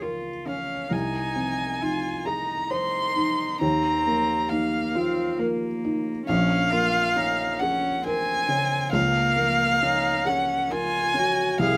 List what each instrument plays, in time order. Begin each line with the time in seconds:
Already playing: felt piano C#2 A#3 C#4 G#4
0.02 cello F4, felt piano A#4
0.46 felt piano C#4, cello C#4, violin F5
0.91 felt piano C2, cello D#4, violin G#5
1.35 felt piano C4
1.81 felt piano D#4, cello F4
2.25 cello D#4, felt piano G#4, violin A#5
2.70 cello D#4, felt piano C5, violin C6
3.16 felt piano D#4
3.60 felt piano D#2, cello C4, violin A#5
4.06 felt piano A#3
4.49 cello A#3, felt piano D#4, violin F5
4.95 cello C4, felt piano F4
5.38 cello A#3, felt piano A#4
5.84 felt piano D#4
6.26 felt piano A#1, cello C#4, violin F5
6.72 felt piano A#3, cello F4
7.16 felt piano C#4, cello D#4
7.59 cello C#4, felt piano G#4, violin F#5
8.03 cello C4, felt piano A#4, violin G#5
8.48 felt piano C#3
8.92 felt piano C#2, cello A#3, violin F5
9.36 felt piano A#3
9.82 felt piano C#4, cello D#4
10.25 cello C#4, felt piano G#4, violin F#5
10.70 cello F4, felt piano A#4, violin G#5
11.14 felt piano C#4, cello F#4
11.59 felt piano C2, cello G#4, violin F5